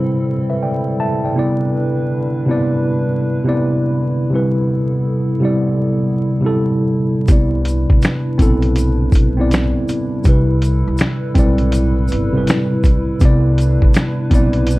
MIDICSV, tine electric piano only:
0, 0, Header, 1, 2, 480
1, 0, Start_track
1, 0, Key_signature, 0, "major"
1, 0, Tempo, 740741
1, 881, Time_signature, 4, 2, 24, 8
1, 9585, End_track
2, 0, Start_track
2, 0, Title_t, "Tine electric piano"
2, 0, Program_c, 0, 4
2, 0, Control_c, 0, 64, 127
2, 0, Note_on_c, 0, 48, 73
2, 0, Note_on_c, 0, 55, 74
2, 0, Note_on_c, 0, 64, 72
2, 0, Note_on_c, 0, 71, 86
2, 0, Note_on_c, 0, 72, 90
2, 172, Note_off_c, 0, 72, 0
2, 237, Note_off_c, 0, 48, 0
2, 242, Note_off_c, 0, 55, 0
2, 246, Note_off_c, 0, 64, 0
2, 320, Note_on_c, 0, 76, 60
2, 324, Note_off_c, 0, 71, 0
2, 324, Note_on_c, 0, 71, 50
2, 399, Note_off_c, 0, 76, 0
2, 401, Note_off_c, 0, 71, 0
2, 405, Note_on_c, 0, 79, 65
2, 407, Note_on_c, 0, 74, 60
2, 631, Note_off_c, 0, 79, 0
2, 632, Note_off_c, 0, 74, 0
2, 647, Note_on_c, 0, 81, 74
2, 650, Note_on_c, 0, 76, 59
2, 790, Note_off_c, 0, 81, 0
2, 791, Note_off_c, 0, 76, 0
2, 808, Note_on_c, 0, 79, 53
2, 811, Note_on_c, 0, 74, 46
2, 871, Note_on_c, 0, 48, 74
2, 880, Note_on_c, 0, 59, 67
2, 889, Control_c, 0, 64, 0
2, 892, Note_off_c, 0, 74, 0
2, 892, Note_on_c, 0, 64, 71
2, 900, Note_on_c, 0, 74, 88
2, 1020, Control_c, 0, 64, 127
2, 1029, Note_off_c, 0, 79, 0
2, 1546, Note_off_c, 0, 48, 0
2, 1550, Note_off_c, 0, 59, 0
2, 1556, Note_off_c, 0, 64, 0
2, 1560, Note_off_c, 0, 74, 0
2, 1595, Note_on_c, 0, 48, 80
2, 1607, Note_on_c, 0, 59, 75
2, 1615, Note_on_c, 0, 64, 76
2, 1627, Note_on_c, 0, 74, 96
2, 2157, Note_off_c, 0, 48, 0
2, 2164, Note_off_c, 0, 59, 0
2, 2168, Note_off_c, 0, 64, 0
2, 2173, Note_off_c, 0, 74, 0
2, 2230, Note_on_c, 0, 48, 84
2, 2238, Note_on_c, 0, 59, 74
2, 2251, Note_on_c, 0, 64, 73
2, 2260, Note_on_c, 0, 74, 90
2, 2757, Note_off_c, 0, 48, 0
2, 2761, Note_off_c, 0, 59, 0
2, 2767, Note_off_c, 0, 64, 0
2, 2772, Note_off_c, 0, 74, 0
2, 2791, Note_on_c, 0, 48, 77
2, 2805, Note_on_c, 0, 55, 68
2, 2808, Control_c, 0, 64, 0
2, 2815, Note_on_c, 0, 64, 71
2, 2822, Note_on_c, 0, 71, 78
2, 2921, Control_c, 0, 64, 127
2, 3466, Note_off_c, 0, 48, 0
2, 3473, Note_off_c, 0, 55, 0
2, 3478, Note_off_c, 0, 64, 0
2, 3481, Note_off_c, 0, 71, 0
2, 3502, Note_on_c, 0, 48, 79
2, 3511, Note_on_c, 0, 55, 74
2, 3522, Note_on_c, 0, 64, 70
2, 3533, Note_on_c, 0, 74, 93
2, 4071, Note_off_c, 0, 48, 0
2, 4076, Note_off_c, 0, 55, 0
2, 4081, Note_off_c, 0, 64, 0
2, 4086, Note_off_c, 0, 74, 0
2, 4157, Note_on_c, 0, 48, 78
2, 4165, Note_on_c, 0, 55, 72
2, 4178, Note_on_c, 0, 64, 69
2, 4190, Note_on_c, 0, 69, 88
2, 4681, Note_off_c, 0, 48, 0
2, 4684, Note_off_c, 0, 55, 0
2, 4691, Note_off_c, 0, 64, 0
2, 4697, Note_off_c, 0, 69, 0
2, 4715, Note_on_c, 0, 48, 74
2, 4724, Note_on_c, 0, 59, 67
2, 4730, Control_c, 0, 64, 0
2, 4734, Note_on_c, 0, 64, 69
2, 4744, Note_on_c, 0, 74, 72
2, 4836, Control_c, 0, 64, 127
2, 5388, Note_off_c, 0, 48, 0
2, 5392, Note_off_c, 0, 59, 0
2, 5397, Note_off_c, 0, 64, 0
2, 5402, Note_off_c, 0, 74, 0
2, 5430, Note_on_c, 0, 60, 79
2, 5436, Note_on_c, 0, 59, 74
2, 5448, Note_on_c, 0, 64, 77
2, 5459, Note_on_c, 0, 69, 83
2, 5995, Note_off_c, 0, 60, 0
2, 5998, Note_off_c, 0, 59, 0
2, 6004, Note_off_c, 0, 64, 0
2, 6009, Note_off_c, 0, 69, 0
2, 6072, Note_on_c, 0, 60, 72
2, 6079, Note_on_c, 0, 59, 78
2, 6089, Note_on_c, 0, 64, 72
2, 6099, Note_on_c, 0, 74, 88
2, 6598, Note_off_c, 0, 60, 0
2, 6602, Note_off_c, 0, 59, 0
2, 6606, Note_off_c, 0, 64, 0
2, 6611, Note_off_c, 0, 74, 0
2, 6636, Note_on_c, 0, 48, 77
2, 6646, Note_on_c, 0, 55, 74
2, 6648, Control_c, 0, 64, 0
2, 6654, Note_on_c, 0, 64, 74
2, 6667, Note_on_c, 0, 71, 77
2, 6761, Control_c, 0, 64, 127
2, 7308, Note_off_c, 0, 48, 0
2, 7313, Note_off_c, 0, 55, 0
2, 7317, Note_off_c, 0, 64, 0
2, 7324, Note_off_c, 0, 71, 0
2, 7351, Note_on_c, 0, 60, 90
2, 7361, Note_on_c, 0, 55, 74
2, 7374, Note_on_c, 0, 64, 74
2, 7380, Note_on_c, 0, 74, 97
2, 7916, Note_off_c, 0, 60, 0
2, 7921, Note_off_c, 0, 55, 0
2, 7927, Note_off_c, 0, 64, 0
2, 7930, Note_off_c, 0, 74, 0
2, 7989, Note_on_c, 0, 48, 84
2, 7999, Note_on_c, 0, 55, 69
2, 8010, Note_on_c, 0, 64, 69
2, 8018, Note_on_c, 0, 71, 85
2, 8516, Note_off_c, 0, 48, 0
2, 8522, Note_off_c, 0, 55, 0
2, 8527, Note_off_c, 0, 64, 0
2, 8531, Note_off_c, 0, 71, 0
2, 8554, Note_on_c, 0, 48, 80
2, 8566, Note_on_c, 0, 59, 77
2, 8567, Control_c, 0, 64, 0
2, 8574, Note_on_c, 0, 64, 72
2, 8586, Note_on_c, 0, 74, 99
2, 8679, Control_c, 0, 64, 127
2, 9228, Note_off_c, 0, 48, 0
2, 9233, Note_off_c, 0, 59, 0
2, 9237, Note_off_c, 0, 64, 0
2, 9243, Note_off_c, 0, 74, 0
2, 9265, Note_on_c, 0, 60, 73
2, 9277, Note_on_c, 0, 59, 80
2, 9288, Note_on_c, 0, 64, 78
2, 9298, Note_on_c, 0, 74, 96
2, 9585, Note_off_c, 0, 59, 0
2, 9585, Note_off_c, 0, 60, 0
2, 9585, Note_off_c, 0, 64, 0
2, 9585, Note_off_c, 0, 74, 0
2, 9585, End_track
0, 0, End_of_file